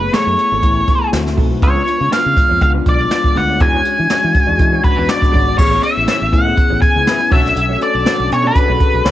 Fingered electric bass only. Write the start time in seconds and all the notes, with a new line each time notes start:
0.14 muted fingered electric bass stroke
0.27 F#2
0.52 G#1
0.63 A1
1.13 D2
1.38 B1
1.63 C#2
2.01 C#3
2.13 muted fingered electric bass stroke
2.26 C#3
2.51 F2
2.61 C#2
2.86 B1
3.37 D2
3.61 E2
3.99 E3
4.11 muted fingered electric bass stroke
4.24 E3
4.48 E2
4.59 E3
4.98 E2
5.34 G#1
5.59 A1
5.97 A1
6.22 A1
6.33 A2
6.71 A1
6.96 C#2
7.32 B1
7.56 B1
7.95 B1
8.20 B1
8.32 B2
8.70 B1
8.94 B1
9.05 C#2